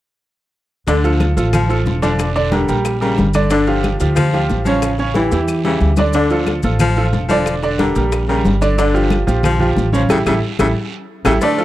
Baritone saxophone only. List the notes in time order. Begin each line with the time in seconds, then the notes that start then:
0.87 D3
1.54 F3
2.02 F3
2.52 D3
3.01 C#3
3.51 D3
4.16 F3
4.65 F3
5.15 E3
5.65 C#3
6.14 D3
6.80 F3
7.28 F3
7.78 D3
8.28 C#3
8.78 D3
9.44 F3
9.94 F3
10.11 C#3
10.26 C#3
10.59 C#3
11.25 C#3
11.42 A3